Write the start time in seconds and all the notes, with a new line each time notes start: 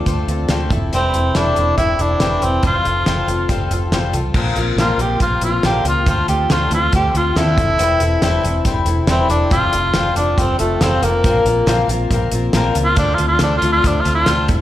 0.06 D2 A3 C4 F4 A4, kick, closed hi-hat
0.28 D2 C4 F4 A4, closed hi-hat
0.48 D2 D3 A3 C4 F4 A4, snare, closed hi-hat
0.70 E1 C4 E4 A4, kick, closed hi-hat
0.93 E1 E3 G3 C4 E4 A4, closed hi-hat
1.13 E1 C4 E4 A4, closed hi-hat
1.35 E1 E3 G3 C4 D4 E4 A4, snare, closed hi-hat
1.56 E1 C4 E4 A4, closed hi-hat
1.77 E1 G3 C4 E4 A4, kick, closed hi-hat
1.99 E1 C4 D4 E4 A4, closed hi-hat
2.20 E1 E3 G3 C4 E4 A4, snare, closed hi-hat
2.41 E1 C4 E4 A4, closed hi-hat
2.63 F1 F3 G3 C4 F4 A4, kick, closed hi-hat
2.84 F1 C4 F4 A4, closed hi-hat
3.06 F1 F3 G3 C4 F4 A4, snare, closed hi-hat
3.27 F1 C4 F4 A4, closed hi-hat
3.48 F1 G3 C4 F4 A4, kick, closed hi-hat
3.70 F1 C4 F4 A4, closed hi-hat
3.91 F1 F3 G3 C4 F4 A4, snare, closed hi-hat
4.13 C2 C4 F4 A4, closed hi-hat
4.34 A#1 A#2 D3 A#3 C4 F4 A#4, kick, crash
4.56 A#1 A#3 C4 F4 A#4, closed hi-hat
4.76 A#1 A#2 D3 A#3 C4 F4 A#4, snare, closed hi-hat
4.98 A#1 F4 G4 A#4, closed hi-hat
5.02 A#3 C4
5.20 A#1 A#3 C4 F4 A#4, kick, closed hi-hat
5.41 A#1 C4 F4 A#4, closed hi-hat
5.46 A#3
5.63 A#1 A#2 D3 A#3 C4 F4 G4 A#4, snare, closed hi-hat
5.85 C#2 A#3 C4 F4 A#4, closed hi-hat
5.89 F4
6.06 D2 D3 A3 C4 F4 A4, kick, closed hi-hat
6.28 D2 C4 F4 G4 A4, closed hi-hat
6.49 D2 D3 A3 C4 F4 A4, snare, closed hi-hat
6.71 D2 C4 F4 A4, closed hi-hat
6.93 D2 A3 C4 F4 G4 A4, kick, closed hi-hat
7.14 D2 C4 F4 A4, closed hi-hat
7.36 D#2 D3 A3 C4 E4 F4 A4, snare, closed hi-hat
7.57 E1 C4 E4 A4, kick, closed hi-hat
7.78 E1 E3 G3 C4 E4 A4, closed hi-hat
8.00 E1 C4 E4 A4, closed hi-hat
8.22 E1 E3 G3 C4 E4 A4, snare, closed hi-hat
8.43 E1 C4 E4 A4, closed hi-hat
8.65 E1 G3 C4 E4 A4, kick, closed hi-hat
8.85 E1 E4 A4, closed hi-hat
8.89 C4
9.07 E1 E3 G3 C4 E4 A4, snare, closed hi-hat
9.29 E1 C4 D4 E4 A4, closed hi-hat
9.50 F1 F3 G3 C4 F4 A4, kick, closed hi-hat
9.72 F1 C4 F4 A4, closed hi-hat
9.93 F1 F3 G3 C4 F4 A4, snare, closed hi-hat
10.15 F1 C4 D4 F4 A4, closed hi-hat
10.38 F1 G3 C4 F4 A4, kick, closed hi-hat
10.59 F1 A3 C4 F4 A4, closed hi-hat
10.80 F1 F3 G3 C4 F4 A4, snare, closed hi-hat
11.02 F1 A#3 C4 F4 A4, closed hi-hat
11.24 A#1 A#2 D3 A#3 C4 F4 A#4, kick, closed hi-hat
11.45 A#1 A#3 C4 F4 A#4, closed hi-hat
11.66 A#1 A#2 D3 A#3 C4 F4 A#4, snare, closed hi-hat
11.88 A#1 A#3 C4 F4 A#4, closed hi-hat
12.11 A#1 A#3 C4 F4 A#4, kick, closed hi-hat
12.32 A#1 A#3 C4 F4 A#4, closed hi-hat
12.53 A#1 A#2 D3 A#3 C4 F4 A#4, snare, closed hi-hat
12.74 C#2 A#3 C4 F4 A#4, closed hi-hat
12.84 F4
12.95 D2 D3 A3 C4 D4 F4 A4, kick, closed hi-hat
13.15 F4 A4, closed hi-hat
13.19 D2 C4
13.28 F4
13.39 D2 D3 A3 C4 D4 F4 A4, snare, closed hi-hat
13.57 F4
13.62 D2 C4 F4 A4, closed hi-hat
13.72 F4
13.82 D2 A3 C4 F4 A4, kick, closed hi-hat
13.88 D4
14.01 F4 A4
14.05 D2 C4 F4, closed hi-hat
14.14 F4
14.26 D2 D3 A3 C4 F4 A4, snare, closed hi-hat
14.48 E1 C4 E4 A4, kick, closed hi-hat